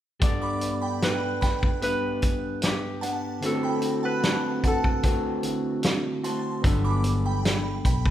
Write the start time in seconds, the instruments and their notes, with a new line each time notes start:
0.20 tine electric piano G2 B3 D4, clean electric guitar G3 B3 D4, harp D5, kick, closed hi-hat
0.24 tine electric piano A4 F#5
0.42 synth bell B5 D6
0.61 closed hi-hat
0.82 synth bell G5 B5
1.02 harp B4, snare, closed hi-hat
1.41 synth bell G5 B5, kick, snare, closed hi-hat
1.63 kick
1.82 clean electric guitar G3 B3 D4, harp B4, closed hi-hat
2.22 kick, closed hi-hat
2.62 harp G4, snare, closed hi-hat
3.01 clean electric guitar B3 D4, synth bell F#5 A5, closed hi-hat
3.41 tine electric piano D3 C4 E4, clean electric guitar D3 A3, closed hi-hat
3.45 clean electric guitar C4 F#4, tine electric piano F#4 A4, harp A4
3.63 synth bell G5 B5
3.82 closed hi-hat
4.03 harp B4, synth bell F#5 A5
4.23 clean electric guitar D3 A3 C4 F#4, snare, closed hi-hat
4.64 harp A4, synth bell F#5 A5, kick, closed hi-hat
4.84 kick
5.03 clean electric guitar D3 A3 C4 F#4, kick, closed hi-hat
5.43 tine electric piano D3 C4 E4 F#4 A4, closed hi-hat
5.83 snare, closed hi-hat
6.24 clean electric guitar A3 C4 F#4, synth bell A5 C6, closed hi-hat
6.62 fingered electric bass G1, tine electric piano F#3 B3 D4, clean electric guitar G3 B3, kick, closed hi-hat
6.66 clean electric guitar D4, tine electric piano A4
6.84 synth bell B5 D6
7.04 closed hi-hat
7.26 synth bell G5 B5
7.45 snare, closed hi-hat
7.85 fingered electric bass B1, synth bell G5 B5, kick, closed hi-hat
8.06 kick